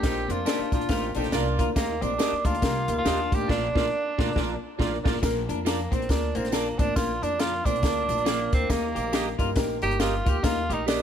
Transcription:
Already playing: G4
0.03 A#1 A#3 C4 D4 D#4 F4 G4 A#4, kick, snare, closed hi-hat, tambourine
0.28 F2 A#3 C4 D4 F4 A#4, closed hi-hat, tambourine
0.45 A#3 C4 D4 D#4 F4 G4 A#4 D5 F5, snare, closed hi-hat, tambourine
0.59 muted upright bass stroke
0.72 A#1 A#3 D4 F4 A#4, kick, closed hi-hat, tambourine
0.81 closed hi-hat
0.89 A1 A#3 C4 D4 D#4 F4 G4 A#4, kick, snare, closed hi-hat, tambourine
1.15 A#1 A#3 C4 D4 D#4 F4 G4 A4, closed hi-hat, tambourine
1.24 snare, closed hi-hat
1.32 C2 A#3 D4 F4 A#4 D5 F5, snare, closed hi-hat, tambourine
1.59 D2 A#3 D4 F4 A#4, kick, closed hi-hat, tambourine
1.76 D#2 A#3 D#4 G4 A#4, kick, snare, closed hi-hat, tambourine
2.01 A#1 A#3 C4 D4 D#4 G4 A#4, closed hi-hat, tambourine
2.18 A#3 D4 D#4 G4 A#4 D#5, snare, closed hi-hat, tambourine
2.32 muted upright bass stroke
2.44 D2 A#3 D4 D#4 F4 G4 A#4, kick, closed hi-hat, tambourine
2.55 closed hi-hat
2.62 C2 A#3 D#4 G4 A#4, kick, snare, closed hi-hat, tambourine
2.88 D2 A#3 D#4 G4 A#4, closed hi-hat, tambourine
2.98 F4
3.05 D#2 A#3 D4 D#4 G4 A#4 D#5, snare, closed hi-hat, tambourine
3.31 A1 A#3 D#4 G4 A#4, kick, closed hi-hat, tambourine
3.48 A#1 A#3 D4 F4 A#4 D5, kick, snare, crash
3.74 A#1 A#3 D4 F4 A#4 D5, kick, snare
4.18 A#1 A#3 D4 F4 A#4 D5, kick, snare
4.35 A#1 A#3 D4 F4 A#4 D5, kick, snare
4.78 A#1 A#3 D4 F4 A#4 D5, kick, snare
5.03 A#1 A#3 D4 F4 A#4 D5, kick, snare, crash
5.22 A#1 A#3 D4 F4 A#4, kick, snare, closed hi-hat, tambourine
5.48 F2 A#3 D4 F4 A#4, closed hi-hat, tambourine
5.65 A#3 D4 F4 A#4 D5, snare, closed hi-hat, tambourine
5.91 A#1 A#3 C4 D4 F4 A#4, kick, closed hi-hat, tambourine
6.02 closed hi-hat
6.09 D2 A#3 D4 F4 A#4, kick, snare, closed hi-hat, tambourine
6.35 A#1 A#3 C4 D4 F4 A#4, closed hi-hat, tambourine
6.45 snare, closed hi-hat
6.52 A#3 D4 F4 A#4 D5, snare, closed hi-hat, tambourine
6.79 A1 A#3 C4 D4 F4 A#4, kick, closed hi-hat, tambourine
6.96 A#1 A#3 D4 F4 A#4, kick, snare, closed hi-hat, tambourine
7.22 F2 A#3 D4 F4 A#4, closed hi-hat, tambourine
7.39 A#3 D4 F4 A#4 D5, snare, closed hi-hat, tambourine
7.65 A#1 A#3 C4 D4 F4 A#4, kick, closed hi-hat, tambourine
7.76 closed hi-hat
7.83 D2 A#3 D4 F4 A#4, kick, snare, closed hi-hat, tambourine
8.09 A#1 A#3 D4 F4 A#4, closed hi-hat, tambourine
8.18 closed hi-hat
8.25 A#3 D4 F4 A#4 D5, snare, closed hi-hat, tambourine
8.52 D2 A#3 C4 D4 F4 A#4, kick, closed hi-hat, tambourine
8.69 D#2 A#3 D#4 G4 A#4, kick, snare, closed hi-hat, tambourine
8.95 A#1 A#3 D#4 G4 A#4, closed hi-hat, tambourine
9.13 A#3 D#4 G4 A#4 D#5, snare, closed hi-hat, tambourine
9.38 G1 A#3 D#4 F4 G4 A#4, kick, closed hi-hat, tambourine
9.55 A#1 A#3 D#4 G4 A#4, kick, snare, closed hi-hat, tambourine
9.82 G1 A#3 D#4 G4 A#4, closed hi-hat, tambourine
9.91 closed hi-hat
10.00 A#3 D#4 F4 G4 A#4 D#5, snare, closed hi-hat, tambourine
10.25 D2 A#3 D#4 F4 G4 A#4, kick, closed hi-hat, tambourine
10.43 D#2 A#3 D#4 F4 G4 A#4, kick, snare, closed hi-hat, tambourine
10.69 A#1 A#3 D#4 G4 A#4, closed hi-hat, tambourine
10.73 D#4
10.87 A#3 D4 D#4 G4 A#4 D#5, snare, closed hi-hat, tambourine

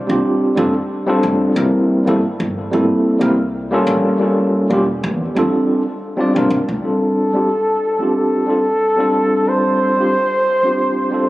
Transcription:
0.07 C2 G3 C4 D4 F4 G4
0.55 F1 G3 C4 D4 F4 A4
1.06 G3 C4 D4 F4 A4
1.23 F1
1.54 C2 G3 A#3 C4 E4 A#4
2.05 G1 G3 A#3 C4 E4 A4
2.40 G1
2.71 G1 G3 A#3 C4 E4 A4
3.19 C2 G3 A#3 C4 E4 A#4
3.71 G3 A#3 C#4 F4 A4
3.87 A1
4.19 G3 A#3 C#4 F4 A4
4.70 E1 G3 A#3 C#4 F4 G4
5.04 E2
5.35 E2 G3 C4 D4 F4 A4
6.17 G3 C4 D4 F4 D5
6.34 C2 G3 C4 D4 F4 A#4
6.50 C2
6.69 C2
6.82 G3 C4 D4 F4 A4
6.86 A4
7.33 G3 C4 D4 F4 G4
7.99 G3 C4 D4 F4 G4
8.17 A4
8.46 G3 C4 D4 F4 A4
8.97 G3 C4 D4 F4 A4
9.46 G3 C4 D4 F4 A4 C5
9.97 G3 C4 D4 F4 G4
10.63 G3 C4 D4 F4 G4
11.10 G3 C4 D4 F4 A4

